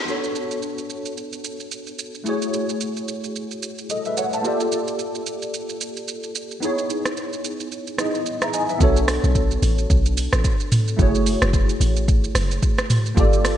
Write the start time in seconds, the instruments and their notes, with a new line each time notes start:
0.05 tine electric piano B3 D4 F#4 A4, shaker
0.10 tine electric piano C#5
0.24 shaker
0.35 shaker
0.51 shaker
0.62 shaker
0.78 shaker
0.90 shaker
1.05 shaker
1.17 shaker
1.33 shaker
1.44 shaker
1.60 shaker
1.71 shaker
1.87 shaker
1.99 shaker
2.15 shaker
2.24 tine electric piano A3 E4 F#4 G#4, shaker
2.29 tine electric piano C#5
2.42 shaker
2.53 shaker
2.69 shaker
2.81 shaker
2.97 shaker
3.08 shaker
3.24 shaker
3.36 shaker
3.51 shaker
3.63 shaker
3.78 shaker
3.90 tine electric piano A4 D#5, shaker
4.05 tine electric piano B4 E5, shaker
4.17 tine electric piano C#5 F#5, shaker
4.33 tine electric piano E5 A5, shaker
4.42 tine electric piano A#3 F4 G4 A4, shaker
4.47 tine electric piano D5
4.60 shaker
4.72 shaker
4.88 shaker
4.99 shaker
5.15 shaker
5.26 shaker
5.42 shaker
5.54 shaker
5.69 shaker
5.81 shaker
5.97 shaker
6.08 shaker
6.23 shaker
6.35 shaker
6.51 shaker
6.60 tine electric piano B3 D#4 E4 G#4, shaker
6.65 tine electric piano C#5
6.78 shaker
6.90 shaker
7.05 cross-stick, shaker
7.17 shaker
7.33 shaker
7.44 shaker
7.60 shaker
7.72 shaker
7.87 shaker
7.98 tine electric piano B3 D#4 E4 G#4 D#5, cross-stick, shaker
8.15 shaker
8.26 shaker
8.42 tine electric piano E5 A#5, cross-stick, shaker
8.53 tine electric piano D#5 G#5, shaker
8.69 tine electric piano B4 E5, shaker
8.78 log drum bass B1, tine electric piano B3 D4 F#4 A4, kick, shaker
8.83 tine electric piano C#5
8.96 shaker
9.08 cross-stick, open hi-hat, shaker
9.24 log drum bass B1, shaker
9.35 kick, shaker
9.51 shaker
9.62 log drum bass A1, open hi-hat, shaker
9.78 shaker
9.90 log drum bass B1, kick, shaker
10.06 shaker
10.17 open hi-hat, shaker
10.33 log drum bass A1, cross-stick, shaker
10.44 kick, shaker
10.60 shaker
10.72 mid tom, open hi-hat, shaker
10.88 shaker
10.97 log drum bass F#1, tine electric piano A3 E4 F#4 G#4, kick, shaker
11.02 tine electric piano C#5
11.15 shaker
11.26 open hi-hat, shaker
11.42 log drum bass F#1, cross-stick, shaker
11.53 kick, shaker
11.69 shaker
11.80 log drum bass A1, open hi-hat, shaker
11.97 shaker
12.08 kick, shaker
12.24 shaker
12.35 log drum bass F#1, cross-stick, open hi-hat, shaker
12.51 shaker
12.62 kick, shaker
12.78 cross-stick, shaker
12.90 mid tom, open hi-hat, shaker
13.06 shaker
13.15 log drum bass G1, tine electric piano A#3 F4 G4 A4, kick, shaker
13.20 tine electric piano D5
13.33 shaker
13.45 cross-stick, open hi-hat, shaker